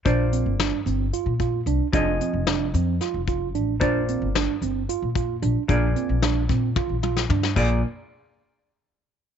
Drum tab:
CC |--------------|--------------|--------------|--------------|
HH |x-x-x-x-x-x-x-|x-x-x-x-x-x-x-|x-x-x-x-x-x-x-|x-x-x-x-------|
SD |----o---------|----o---o-----|----o---------|----o-o----o-o|
T1 |--------------|--------------|--------------|--------o-----|
T2 |--------------|--------------|--------------|----------o---|
FT |--------------|--------------|--------------|------------o-|
BD |o---------o---|o---------o---|o---------o---|o-----o-o-----|

CC |x-------------|
HH |--------------|
SD |--------------|
T1 |--------------|
T2 |--------------|
FT |--------------|
BD |o-------------|